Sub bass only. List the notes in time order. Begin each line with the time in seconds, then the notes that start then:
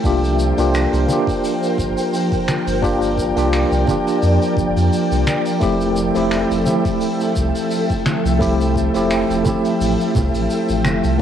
0.04 C2
0.58 C2
0.93 C2
1.78 G1
2.67 G1
3.36 C2
3.71 C2
4.23 F2
4.57 G1
4.76 F2
5.12 C2
5.62 F1
6.16 F1
6.51 F1
7.36 C2
8.25 C2
8.95 F1
9.30 F1
9.81 A1
10.15 C2
10.35 A1
10.70 A1
10.85 F1
11.04 C2